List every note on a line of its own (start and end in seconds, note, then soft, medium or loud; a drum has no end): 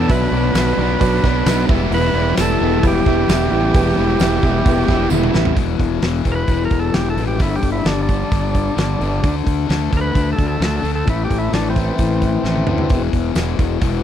0.00 0.10 F#3 medium
0.00 0.10 B3 medium
0.00 0.12 B3 medium
0.00 0.10 D4 medium
0.00 0.11 D4 medium
0.00 0.12 A4 medium
0.08 0.27 B1 loud
0.08 0.55 B2 loud
0.08 0.33 F#3 loud
0.08 0.32 B3 loud
0.08 0.27 D4 loud
0.08 0.28 F#4 loud
0.08 0.28 B4 loud
0.08 1.66 B4 medium
0.08 0.28 E5 loud
0.08 kick loud
0.08 open hi-hat medium
0.12 0.31 D4 loud
0.31 0.49 B1 medium
0.31 0.55 F#3 medium
0.31 0.57 B3 medium
0.31 0.50 D4 medium
0.31 0.56 D4 medium
0.31 0.50 F#4 medium
0.31 0.51 B4 medium
0.31 0.51 D5 medium
0.54 0.72 B1 medium
0.54 1.01 B2 loud
0.54 0.80 F#3 loud
0.54 0.80 B3 loud
0.54 0.73 D4 medium
0.54 0.78 D4 loud
0.54 0.73 F#4 medium
0.54 0.73 B4 medium
0.54 0.74 E5 medium
0.54 snare loud
0.54 open hi-hat medium
0.54 tambourine loud
0.77 0.95 B1 medium
0.77 1.24 B3 medium
0.77 0.96 D4 medium
0.77 1.23 D4 medium
0.77 0.96 F#4 medium
0.77 0.96 B4 medium
0.77 0.96 D5 loud
0.81 1.25 F#3 medium
0.99 1.19 B1 loud
0.99 1.26 B2 medium
0.99 1.25 F#3 medium
0.99 1.18 D4 loud
0.99 1.18 F#4 loud
0.99 1.19 B4 loud
0.99 1.19 D5 loud
0.99 kick loud
0.99 open hi-hat medium
1.03 1.25 B3 medium
1.03 1.23 D4 medium
1.23 1.41 B1 medium
1.23 1.47 F#3 medium
1.23 1.49 B3 medium
1.23 1.41 D4 medium
1.23 1.49 D4 medium
1.23 1.42 F#4 medium
1.23 1.42 B4 loud
1.23 1.42 D5 loud
1.23 kick medium
1.23 snare soft
1.27 1.46 B2 medium
1.46 1.64 B1 loud
1.46 1.69 B2 medium
1.46 1.69 F#3 medium
1.46 1.70 B3 medium
1.46 1.64 D4 medium
1.46 1.64 F#4 medium
1.46 1.64 B4 medium
1.46 1.65 E5 medium
1.46 snare loud
1.46 open hi-hat medium
1.46 tambourine loud
1.50 1.69 D4 medium
1.67 1.87 E1 medium
1.67 1.93 G3 medium
1.67 1.94 B3 medium
1.67 2.05 E4 medium
1.67 1.95 E4 loud
1.67 2.05 G4 medium
1.67 2.05 B4 loud
1.67 2.05 E5 loud
1.67 kick loud
1.72 1.93 E3 medium
1.91 2.09 E1 loud
1.91 2.38 E3 loud
1.91 2.18 G3 loud
1.91 2.16 B3 loud
1.91 2.36 B4 loud
1.91 open hi-hat medium
1.95 2.15 E4 loud
2.13 2.32 E1 medium
2.13 2.39 B3 medium
2.13 2.33 E4 medium
2.13 2.40 E4 medium
2.13 2.33 G4 medium
2.13 2.34 B4 medium
2.13 2.33 D5 medium
2.18 2.38 G3 medium
2.37 2.56 E1 medium
2.37 3.28 E3 loud
2.37 2.63 G3 loud
2.37 2.62 B3 loud
2.37 2.56 E4 medium
2.37 2.61 E4 loud
2.37 2.56 G4 medium
2.37 2.86 A4 loud
2.37 2.56 B4 medium
2.37 2.56 D5 medium
2.37 snare loud
2.37 open hi-hat medium
2.37 tambourine loud
2.61 2.78 E1 medium
2.61 3.08 G3 medium
2.61 3.07 B3 medium
2.61 2.79 E4 medium
2.61 3.06 E4 medium
2.61 2.79 G4 medium
2.61 2.79 B4 medium
2.61 2.79 G5 medium
2.82 3.01 E1 medium
2.82 3.07 E3 medium
2.82 3.06 G3 loud
2.82 3.06 B3 medium
2.82 3.01 E4 loud
2.82 3.05 E4 medium
2.82 3.01 G4 medium
2.82 3.01 B4 medium
2.82 3.02 E5 loud
2.82 kick loud
2.82 open hi-hat medium
2.87 5.10 G4 loud
3.06 3.24 E1 medium
3.06 3.27 E3 medium
3.06 3.29 G3 medium
3.06 3.30 B3 medium
3.06 3.24 E4 medium
3.06 3.31 E4 medium
3.06 3.24 G4 medium
3.06 3.25 B4 medium
3.06 3.25 E5 medium
3.06 kick medium
3.28 3.47 E1 loud
3.28 3.74 E3 medium
3.28 3.74 G3 medium
3.28 3.74 B3 medium
3.28 3.47 E4 medium
3.28 3.75 E4 medium
3.28 3.48 G4 medium
3.28 3.48 B4 medium
3.28 3.48 E5 medium
3.28 snare loud
3.28 open hi-hat medium
3.28 tambourine loud
3.50 3.69 A1 medium
3.50 3.73 G3 medium
3.50 3.74 B3 medium
3.50 3.75 E4 medium
3.50 3.71 E4 medium
3.54 3.71 G4 medium
3.54 3.71 B4 medium
3.54 3.71 G5 loud
3.74 3.92 E1 loud
3.74 4.18 E3 loud
3.74 3.97 G3 medium
3.74 3.97 B3 loud
3.74 3.93 E4 loud
3.74 3.95 E4 loud
3.74 3.93 G4 loud
3.74 3.93 B4 loud
3.74 3.93 G5 loud
3.74 kick loud
3.74 open hi-hat medium
3.96 4.15 E1 medium
3.96 4.19 G3 medium
3.96 4.20 B3 medium
3.96 4.20 E4 medium
3.96 4.16 E4 medium
3.96 4.16 G4 medium
3.96 4.16 B4 medium
3.96 4.17 E5 loud
4.19 4.38 E1 loud
4.19 4.65 E3 loud
4.19 4.43 G3 loud
4.19 4.42 B3 loud
4.19 4.38 E4 medium
4.19 4.41 E4 loud
4.19 4.39 G4 medium
4.19 4.38 B4 medium
4.19 4.39 E5 medium
4.19 snare loud
4.19 open hi-hat medium
4.19 tambourine loud
4.42 4.60 E1 medium
4.42 4.88 G3 medium
4.42 4.88 B3 medium
4.42 4.86 E4 medium
4.42 4.61 E4 medium
4.42 4.62 G4 medium
4.42 4.62 B4 medium
4.42 4.62 E5 loud
4.42 kick medium
4.65 4.83 E1 loud
4.65 4.90 E3 medium
4.65 4.90 G3 medium
4.65 4.88 B3 medium
4.65 4.85 E4 loud
4.65 4.87 E4 medium
4.65 4.85 G4 loud
4.65 4.85 B4 loud
4.65 4.85 G5 loud
4.65 kick loud
4.65 open hi-hat medium
4.88 5.06 E1 loud
4.88 5.09 E3 medium
4.88 5.10 G3 medium
4.88 5.11 B3 medium
4.88 5.11 E4 loud
4.88 5.07 E4 medium
4.88 5.08 G4 medium
4.88 5.08 B4 medium
4.88 5.08 E5 medium
4.88 kick medium
4.88 snare soft
5.10 5.29 E1 loud
5.10 5.55 E3 medium
5.10 5.56 G3 medium
5.10 5.56 B3 medium
5.10 5.56 E4 medium
5.10 5.30 E4 medium
5.10 5.30 G4 medium
5.10 5.31 B4 medium
5.10 5.31 E5 loud
5.10 high tom medium
5.10 tambourine loud
5.23 mid tom medium
5.33 5.52 A1 medium
5.33 5.57 G3 medium
5.33 5.56 B3 medium
5.33 5.55 E4 medium
5.33 5.53 E4 medium
5.33 5.53 G4 medium
5.33 5.53 B4 medium
5.33 5.53 E5 loud
5.33 snare medium
5.45 floor tom medium
5.55 5.75 E1 medium
5.55 6.02 E2 medium
5.55 6.02 B2 medium
5.55 6.02 E3 medium
5.55 kick medium
5.55 open hi-hat medium
5.79 5.98 E1 medium
5.79 kick medium
5.79 open hi-hat soft
6.02 6.21 E1 medium
6.02 6.23 E2 medium
6.02 6.24 B2 medium
6.02 6.24 E3 medium
6.02 snare loud
6.02 open hi-hat medium
6.24 6.44 E1 medium
6.24 6.47 E2 medium
6.24 6.48 B2 medium
6.24 6.48 E3 medium
6.24 kick medium
6.24 open hi-hat medium
6.32 6.34 A#4 medium
6.32 6.64 B4 medium
6.48 6.67 E1 medium
6.48 6.93 E2 medium
6.48 6.94 B2 loud
6.48 6.94 E3 loud
6.48 kick medium
6.48 open hi-hat medium
6.65 6.79 A#4 medium
6.70 6.89 E1 medium
6.70 kick medium
6.70 open hi-hat medium
6.80 6.94 A4 medium
6.94 7.13 E1 medium
6.94 7.16 E2 medium
6.94 7.17 B2 medium
6.94 7.17 E3 medium
6.94 7.09 G4 medium
6.94 snare loud
6.94 open hi-hat medium
7.10 7.25 A4 medium
7.17 7.41 A1 medium
7.17 7.38 E2 medium
7.17 7.39 B2 medium
7.17 7.39 E3 medium
7.17 open hi-hat medium
7.28 7.41 G4 medium
7.39 7.58 G1 medium
7.39 7.84 G2 loud
7.39 7.84 D3 medium
7.39 7.85 G3 medium
7.39 7.56 E4 medium
7.39 kick loud
7.39 open hi-hat medium
7.56 7.70 G4 medium
7.62 7.81 G1 medium
7.62 kick medium
7.62 open hi-hat medium
7.72 7.86 E4 medium
7.85 8.22 G1 medium
7.85 8.08 G2 medium
7.85 8.08 D3 medium
7.85 8.08 G3 medium
7.85 8.01 D4 medium
7.85 snare loud
7.85 open hi-hat medium
8.03 9.36 D4 medium
8.09 8.30 G2 medium
8.09 8.30 D3 medium
8.09 8.31 G3 medium
8.09 kick medium
8.09 open hi-hat medium
8.31 8.68 G1 medium
8.31 8.74 G2 medium
8.31 8.75 D3 loud
8.31 8.75 G3 loud
8.31 kick loud
8.31 open hi-hat medium
8.55 kick medium
8.55 open hi-hat medium
8.76 8.96 G1 medium
8.76 8.99 G2 medium
8.76 8.99 D3 medium
8.76 8.99 G3 medium
8.76 snare loud
8.76 open hi-hat medium
9.00 9.19 G1 loud
9.00 9.22 G2 medium
9.00 9.22 D3 medium
9.00 9.22 G3 medium
9.00 open hi-hat medium
9.23 9.42 D2 medium
9.23 9.67 D3 medium
9.23 9.69 A3 medium
9.23 9.68 D4 loud
9.23 kick loud
9.23 open hi-hat medium
9.46 9.65 D2 medium
9.46 kick medium
9.46 open hi-hat medium
9.68 9.88 D2 medium
9.68 9.90 D3 medium
9.68 9.92 A3 medium
9.68 9.91 D4 medium
9.68 snare loud
9.68 open hi-hat medium
9.92 10.11 D2 medium
9.92 10.13 D3 medium
9.92 10.13 A3 medium
9.92 10.14 D4 medium
9.92 kick medium
9.92 open hi-hat medium
9.97 10.00 A#4 medium
10.01 10.30 B4 loud
10.14 10.33 D2 medium
10.14 10.60 D3 loud
10.14 10.60 A3 loud
10.14 10.61 D4 loud
10.14 kick loud
10.14 open hi-hat medium
10.33 10.47 A4 medium
10.38 10.57 D2 medium
10.38 kick medium
10.38 open hi-hat medium
10.48 10.62 A4 medium
10.60 10.79 D2 loud
10.60 10.81 D3 medium
10.60 10.82 A3 medium
10.60 10.83 D4 medium
10.60 snare loud
10.60 open hi-hat medium
10.65 10.76 A4 medium
10.77 10.92 A4 medium
10.82 11.02 D2 medium
10.82 11.05 D3 medium
10.82 11.05 A3 medium
10.82 11.06 D4 medium
10.82 open hi-hat medium
10.95 11.09 A4 medium
11.07 11.26 A1 medium
11.07 11.52 A2 medium
11.07 11.53 E3 medium
11.07 11.53 A3 loud
11.07 11.23 E4 medium
11.07 kick loud
11.07 open hi-hat medium
11.25 11.38 G4 medium
11.30 11.49 A1 medium
11.30 kick medium
11.30 open hi-hat medium
11.39 11.53 E4 medium
11.52 11.89 A1 medium
11.52 11.75 A2 medium
11.52 11.77 E3 medium
11.52 11.77 A3 medium
11.52 11.69 D4 medium
11.52 snare loud
11.52 open hi-hat medium
11.70 13.03 E3 medium
11.70 13.03 C4 medium
11.76 11.98 A2 medium
11.76 11.98 E3 medium
11.76 11.99 A3 medium
11.76 kick medium
11.76 open hi-hat medium
11.98 12.35 A1 medium
11.98 12.43 A2 medium
11.98 12.44 E3 loud
11.98 12.44 A3 loud
11.98 kick loud
11.98 open hi-hat medium
12.22 kick medium
12.22 open hi-hat medium
12.44 12.62 A1 medium
12.44 12.66 A2 medium
12.44 12.66 E3 medium
12.44 12.67 A3 medium
12.44 snare medium
12.56 high tom medium
12.67 12.85 D2 medium
12.67 12.89 A2 medium
12.67 12.89 E3 medium
12.67 12.89 A3 medium
12.67 mid tom medium
12.78 floor tom medium
12.90 13.09 E1 medium
12.90 13.34 E2 medium
12.90 13.35 B2 medium
12.90 13.36 E3 loud
12.90 kick loud
12.90 open hi-hat medium
13.13 13.31 E1 medium
13.13 kick medium
13.13 open hi-hat medium
13.35 13.54 E1 medium
13.35 13.57 E2 medium
13.35 13.57 B2 medium
13.35 13.58 E3 medium
13.35 snare loud
13.35 open hi-hat medium
13.35 tambourine medium
13.58 13.77 E1 medium
13.58 13.80 E2 medium
13.58 13.80 B2 medium
13.58 13.80 E3 medium
13.58 kick medium
13.58 open hi-hat medium
13.81 14.00 E1 medium
13.81 14.03 E2 loud
13.81 14.03 B2 loud
13.81 14.03 E3 loud
13.81 kick loud
13.81 open hi-hat medium